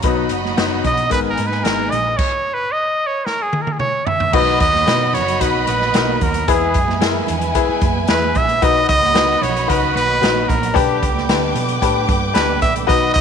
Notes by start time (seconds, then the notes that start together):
0.02 B1 F#3 B3 D#4 F#4 B4 D#5 B5, kick, closed hi-hat
0.29 F#1, closed hi-hat
0.45 snare, high conga
0.57 F#1 F#3 B3 D#4 F#4, snare, closed hi-hat, muted conga
0.73 muted conga
0.84 B2 D#5, kick, closed hi-hat, low conga
0.97 closed hi-hat
1.10 G#1 G#3 B3 D#4 A#4 B4 G#5, kick, closed hi-hat
1.30 A#4
1.37 G#2, closed hi-hat, high conga
1.47 B4
1.51 snare
1.64 G#1 G#3 B3 D#4 A#4, snare, closed hi-hat
1.79 muted conga, high conga
1.90 A#1 D#5, closed hi-hat, low conga
2.17 C#5, kick, crash
2.54 B4
2.72 D#5
3.07 C#5
3.26 A#4, snare
3.42 G#4
3.53 high tom
3.62 A#4
3.67 high tom
3.72 G#4
3.79 C#5, mid tom
4.06 E5, floor tom
4.20 floor tom
4.32 B1 D#3 F#3 B3 D#4 F#4 B4 D#5 B5, kick, crash, muted conga
4.60 D#2 D#5, kick, closed hi-hat
4.74 snare, high conga
4.86 B2 D#4 F#4 B4, snare, closed hi-hat
5.13 F#1 C#5, closed hi-hat, low conga
5.28 closed hi-hat
5.40 B1 D#4 F#4 B4, kick, closed hi-hat
5.55 muted conga
5.67 A#1 B4, closed hi-hat, high conga
5.81 snare
5.94 B1 D#4 F#4 A#4, snare, closed hi-hat
6.08 muted conga, high conga
6.21 D#2 A#4, kick, closed hi-hat, low conga
6.34 closed hi-hat
6.48 E2 E3 G#3 E4 G#4 B4 G#5, kick, closed hi-hat
6.61 muted conga
6.74 F#2, kick, closed hi-hat
6.88 snare, high conga
7.01 E4 G#4 A#4, snare, closed hi-hat
7.15 muted conga
7.27 E2, closed hi-hat, low conga
7.41 closed hi-hat
7.55 E4 G#4 B4, kick, closed hi-hat
7.68 muted picked electric bass stroke, muted conga
7.81 F#2, kick, closed hi-hat, high conga
8.08 E2 E4 G#4 B4, snare, closed hi-hat
8.22 muted conga, high conga
8.35 A#1 E5, kick, closed hi-hat, low conga
8.49 closed hi-hat
8.62 B1 D#3 F#3 D#4 F#4 B4 D#5 B5, kick, closed hi-hat, muted conga
8.89 C#2 D#5, kick, closed hi-hat
9.02 snare, high conga
9.14 D#4 F#4 B4, snare, closed hi-hat, muted conga
9.42 B1 C#5, closed hi-hat, low conga
9.57 closed hi-hat
9.68 C#2 D#4 F#4 B4, kick, closed hi-hat
9.82 muted conga
9.95 B1 B4, closed hi-hat, high conga
10.21 A#1 D#4 F#4 B4, snare, closed hi-hat
10.35 muted conga, high conga
10.49 A#1 A#4, kick, closed hi-hat, low conga
10.63 closed hi-hat
10.74 B1 D3 G3 B3 D4 G4 B4 G5 D6, kick, closed hi-hat
11.02 C#2, kick, closed hi-hat
11.15 snare, high conga
11.29 D2 D4 G4 B4, snare, closed hi-hat
11.41 muted conga
11.53 B2, closed hi-hat, low conga
11.69 closed hi-hat
11.81 A2 D4 G4 B4, kick, closed hi-hat, muted conga
12.07 G2, kick, closed hi-hat, high conga
12.34 D2 D4 G4 B4, snare, closed hi-hat
12.48 high conga
12.62 A#1 E5, kick, closed hi-hat, low conga
12.76 closed hi-hat
12.87 B1 D#3 F#3 D#4 F#4 B4 D#5 B5, kick, closed hi-hat
13.02 muted conga
13.14 C#2 D#5, kick, closed hi-hat